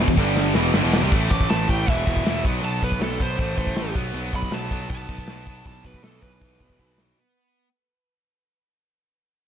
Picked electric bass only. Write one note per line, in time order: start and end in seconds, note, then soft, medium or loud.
0.08 0.17 E1 medium
0.17 0.52 G1 medium
0.55 0.73 E1 loud
0.73 0.82 G1 medium
0.84 1.01 E1 medium
1.03 1.11 C2 loud
1.12 1.28 A1 loud
1.31 1.47 A1 medium
1.51 1.66 A1 medium
1.69 1.85 A1 medium
1.88 2.04 E1 medium
2.07 2.23 E1 loud
2.25 2.41 E1 medium
2.44 2.61 B1 medium
2.63 2.79 B1 medium
2.83 2.99 B1 medium
3.00 3.17 B1 medium
3.21 3.36 B1 medium
3.39 3.55 A1 medium
3.58 3.74 A1 loud
3.75 3.92 A1 medium
3.96 4.12 B1 medium
4.14 4.30 B1 medium
4.33 4.49 B1 medium
4.51 4.68 B1 medium
4.71 4.87 B1 medium
4.90 5.06 B1 medium
5.09 5.25 B1 medium
5.28 5.61 B1 medium
5.66 5.82 B1 medium
5.85 6.01 B1 medium
6.02 6.19 B1 medium
6.22 6.39 B1 medium
6.41 6.58 B1 medium
6.61 6.77 B1 medium
6.79 7.12 B1 medium